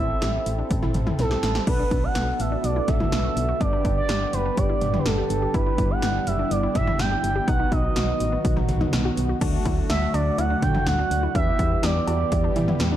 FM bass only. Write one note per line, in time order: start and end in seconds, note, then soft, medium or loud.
0.00 0.15 A1 loud
0.22 0.39 A1 loud
0.46 0.63 A1 loud
0.71 0.87 A1 loud
0.95 1.12 A1 loud
1.19 1.36 B1 loud
1.43 1.60 A1 medium
1.67 1.84 B1 loud
1.91 2.08 B1 loud
2.16 2.33 B1 loud
2.40 2.57 A1 medium
2.64 2.81 B1 loud
2.88 3.05 B1 medium
3.12 3.29 B1 loud
3.36 3.53 B1 loud
3.61 3.78 G1 loud
3.85 4.02 G1 loud
4.09 4.26 G1 loud
4.33 4.50 F#1 medium
4.58 4.75 G1 loud
4.82 4.99 G1 loud
5.06 5.23 G1 loud
5.30 5.47 G1 loud
5.54 5.71 G1 loud
5.78 5.95 G1 loud
6.03 6.20 G1 loud
6.27 6.44 F#1 medium
6.51 6.68 G1 loud
6.75 6.92 G1 loud
6.99 7.16 G1 loud
7.24 7.41 G1 loud
7.48 7.65 B1 loud
7.72 7.89 B1 loud
7.96 8.13 B1 loud
8.20 8.37 A1 medium
8.45 8.62 B1 loud
8.69 8.86 B1 medium
8.93 9.10 B1 loud
9.17 9.34 B1 loud
9.41 9.58 D2 loud
9.65 9.82 D2 loud
9.90 10.07 D2 loud
10.14 10.31 D2 loud
10.38 10.55 D2 loud
10.63 10.79 D3 loud
10.87 11.04 D2 loud
11.11 11.28 D2 medium
11.35 11.52 E2 loud
11.59 11.76 E2 loud
11.84 12.00 E2 loud
12.08 12.25 E2 loud
12.32 12.49 E2 loud
12.56 12.73 E3 loud
12.80 12.97 E2 loud